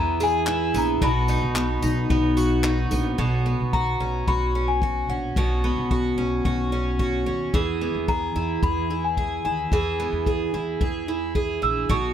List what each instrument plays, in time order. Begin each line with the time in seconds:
Already playing: upright bass E2, twelve-string acoustic guitar E3 B3 E4 G#4, celesta A#5
0.20 twelve-string acoustic guitar G#4, celesta G#5, tambourine
0.47 twelve-string acoustic guitar E4, clap
0.74 upright bass A#1, twelve-string acoustic guitar B3, celesta A#5, tambourine
1.02 upright bass B1, twelve-string acoustic guitar B2 F#4, celesta B5, kick
1.28 twelve-string acoustic guitar D#4, tambourine
1.42 upright bass B1
1.56 twelve-string acoustic guitar B3, clap
1.82 upright bass B1, twelve-string acoustic guitar D#4, tambourine
2.10 upright bass B1, twelve-string acoustic guitar B3, kick
2.37 twelve-string acoustic guitar F#4, tambourine
2.64 twelve-string acoustic guitar D#4, clap
2.91 upright bass A#1, twelve-string acoustic guitar B3, tambourine
3.18 upright bass B1, twelve-string acoustic guitar B2 F#4, kick
3.46 twelve-string acoustic guitar B3
3.60 upright bass B1
3.73 twelve-string acoustic guitar F#4, celesta A#5, kick
4.00 upright bass B1, twelve-string acoustic guitar C#4
4.27 upright bass B1, twelve-string acoustic guitar F#4, celesta B5, kick
4.55 twelve-string acoustic guitar C#4
4.68 celesta G#5
4.82 twelve-string acoustic guitar F#4, kick
5.09 upright bass A#1, twelve-string acoustic guitar C#4, celesta F#5
5.36 upright bass B1, twelve-string acoustic guitar B2 F#4, kick
5.64 twelve-string acoustic guitar B3
5.77 upright bass B1
5.91 twelve-string acoustic guitar F#4, kick
6.18 upright bass B1, twelve-string acoustic guitar C#4
6.45 upright bass B1, twelve-string acoustic guitar F#4, kick
6.72 twelve-string acoustic guitar C#4
6.99 twelve-string acoustic guitar F#4, kick
7.26 upright bass D#2, twelve-string acoustic guitar C#4
7.54 upright bass E2, twelve-string acoustic guitar E3 G#4, kick
7.81 twelve-string acoustic guitar B3
7.95 upright bass E2
8.08 twelve-string acoustic guitar G#4, celesta A#5, kick
8.36 upright bass E2, twelve-string acoustic guitar E4
8.63 upright bass E2, twelve-string acoustic guitar G#4, celesta B5, kick
8.90 twelve-string acoustic guitar E4
9.04 celesta G#5
9.17 twelve-string acoustic guitar G#4, kick
9.45 upright bass D#2, twelve-string acoustic guitar E4, celesta G#5
9.72 upright bass E2, twelve-string acoustic guitar E3 G#4, kick
10.00 twelve-string acoustic guitar B3
10.13 upright bass E2
10.26 twelve-string acoustic guitar G#4, kick
10.54 upright bass E2, twelve-string acoustic guitar E4
10.81 upright bass E2, twelve-string acoustic guitar G#4, kick
11.08 twelve-string acoustic guitar E4
11.35 twelve-string acoustic guitar G#4, kick
11.62 upright bass A#1, twelve-string acoustic guitar E4, celesta E6
11.89 upright bass B1, twelve-string acoustic guitar B2 F#4, celesta C#6, kick